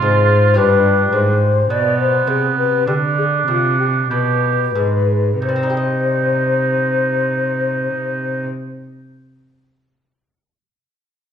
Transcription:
Already playing: C4 F4 G#4
0.01 G#2 C5
0.54 G2 D4 F4 G4 B4
1.13 G#2 C5
1.69 B2 B3 D5
1.99 C5
2.27 C3 G#4
2.57 B4
2.86 D3 D4 G4
3.17 G#4
3.47 C3 F4
3.78 G4
4.10 B2 G4 B4
4.75 G#2
5.41 C3 D#4 C5
5.49 G3
5.56 C4
5.63 D#4
5.70 G4
5.77 D#5

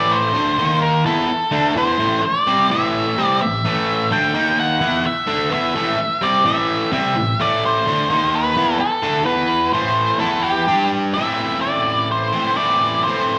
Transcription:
Already playing: A2 E3 A3 D5
0.12 C5
0.34 D3 A3 D4
0.59 D#3 A#3 D#4
0.82 A#4
1.06 E3 B3 E4 A4
1.28 muted overdriven electric guitar stroke
1.51 D3 A3 D4
1.76 E3 B3 E4 C5
1.99 A2 E3 A3
2.23 D5, muted overdriven electric guitar stroke
2.47 C3 G3 C4
2.70 A2 E3 A3 E5
3.17 C3 G3 C4
3.25 D5
3.41 A2 E3 E5
3.65 A2 E3 A3
4.11 D3 A3 D4 G5
4.34 D#3 A#3 D#4
4.60 F#5
4.81 E3 B3 E4
5.05 E5, muted overdriven electric guitar stroke
5.27 D3 A3 D4
5.50 E3 B3 E4 E5
5.75 A2 E3 A3
5.99 muted overdriven electric guitar stroke
6.22 C3 G3 C4 D5
6.45 A2 E3 A3 E5
6.92 C3 G3 C4 E5
7.16 A2 E3
7.40 A2 E3 A3 D5
7.66 C5
7.87 D3 A3 D4
8.10 D#3 A#3 D#4
8.35 B4
8.57 E3 B3 E4
8.80 A4, muted overdriven electric guitar stroke
9.03 D3 A3 D4
9.25 E3 B3 E4 B4
9.73 A2 E3 A3 C5
10.19 E3 B3 E4 A4
10.42 G4
10.68 G3 D4 G4
11.14 A2 E3 A3 C4 E4 E5
11.61 D5
12.12 C5
12.33 A2 E3 A3 C4 E4
12.56 A2 E3 A3 C4 E4 D5
13.04 A2 E3 A3 C5
13.08 C4 E4

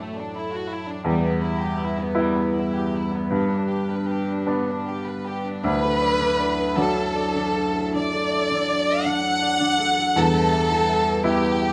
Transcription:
Already playing: A2 F#3 E4 A4
0.00 A3
0.17 D4
0.35 E4
0.52 F#4
0.71 E4
0.89 D4
1.04 E2 G3 E4 B4
1.24 B3
1.42 E4
1.61 G4
1.79 E4
1.98 B3
2.15 G3 B3 E4
2.37 B3
2.55 E4
2.75 G4
2.94 E4
3.13 B3
3.30 G2 B3 D4
3.51 D4
3.69 G4
3.89 B4
4.08 G4
4.27 D4
4.46 B3 D4
4.67 D4
4.87 G4
5.06 B4
5.26 G4
5.47 D4
5.63 D2 F#3 D4 E4 A4 B4
5.83 A4
6.01 D5
6.21 D4
6.40 D5
6.76 F#3 D4 A4
7.16 D5
7.36 D4
7.55 A4
7.75 A4
7.94 D4 D5
8.13 A4
8.33 D5
8.51 D4
8.69 D5
9.05 D4 F#5
9.42 D5
9.60 D4
9.78 A4
9.98 A4
10.16 E2 G3 E4 A4 B4
10.35 B4
10.52 E5
10.71 E4
10.89 E5
11.24 B3 E4 G4
11.61 E5

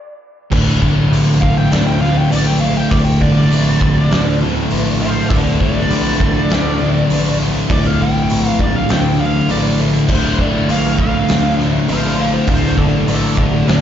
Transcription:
0.52 D1 D2 A2 D3 E3 A3, kick, crash
0.81 G1 D2 A2 D3, kick
1.12 A#1 D2 A2 D3, open hi-hat
1.42 D2 A2 D3 F5, kick
1.57 G5
1.71 D2 A2 D3 D5, snare, open hi-hat
1.87 G5
2.01 D2 A2 D3 F5, snare
2.17 G5
2.31 A#1 D2 A2 D3 D5, open hi-hat
2.46 G5
2.60 D2 A2 D3 F5
2.76 G5
2.91 D1 D2 A2 D3 D5, kick, open hi-hat
3.05 G5
3.21 G1 D2 A2 D3 D5, kick
3.51 A#1 D2 A2 D3, open hi-hat
3.81 D2 A2 D3, kick
4.10 D2 A2 D3, snare, open hi-hat
4.41 D2 A2 D3
4.71 A#1 D2 A2 D3, open hi-hat
5.00 D2 A2 D3 C5 F5
5.30 D1 D2 A2 D3 A4 D5, kick, open hi-hat
5.60 G1 D2 A2 D3 D5, kick
5.90 A#1 D2 A2 D3, open hi-hat
6.20 D2 A2 D3, kick
6.50 D2 A2 D3, snare, open hi-hat
6.80 D2 A2 D3
7.10 A#1 D2 A2 D3, open hi-hat
7.41 D2 A2 D3
7.70 D1 D2 A2 D3 D5, kick, open hi-hat
7.87 F5
8.00 G1 D2 A2 D3 G5
8.29 A#1 D2 A2 D3, open hi-hat
8.59 D2 A2 D3 D5, kick
8.76 F5
8.89 D2 A2 D3 G5, snare, open hi-hat
9.19 D2 A2 D3 F5
9.49 A#1 D2 A2 D3 D5, open hi-hat
9.79 D2 A2 D3
10.08 D1 D2 A2 D3 D4 C5, kick, crash
10.38 G1 D2 A2 D3 D5, kick
10.68 A#1 D2 A2 D3 F5, open hi-hat
10.98 D2 A2 D3, kick
11.02 F5
11.28 D2 A2 D3, snare, open hi-hat
11.57 D2 A2 D3, snare
11.88 A#1 D2 A2 D3 C5 F5, open hi-hat
12.17 D2 A2 D3 C5 F5
12.47 D1 D2 A2 D3 C5 F5, kick, open hi-hat
12.78 G1 D2 A2 D3 A4 D5, kick
13.07 A#1 D2 A2 D3 A4 D5, open hi-hat
13.36 D2 A2 D3 A4 D5, kick
13.66 D2 A2 D3 D5, snare, open hi-hat

